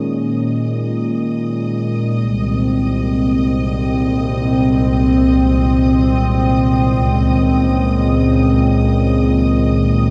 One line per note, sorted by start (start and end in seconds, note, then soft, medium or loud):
0.00 2.19 A#2 medium
0.00 6.91 D#3 medium
0.00 6.92 G#3 medium
0.00 2.18 C#4 medium
0.00 10.10 D#5 medium
0.00 10.10 D#6 medium
2.18 6.92 C2 medium
2.38 10.10 A#2 medium
2.38 10.10 C4 medium
6.92 10.10 C#2 medium
7.18 10.10 D#3 medium
7.64 10.10 G#3 medium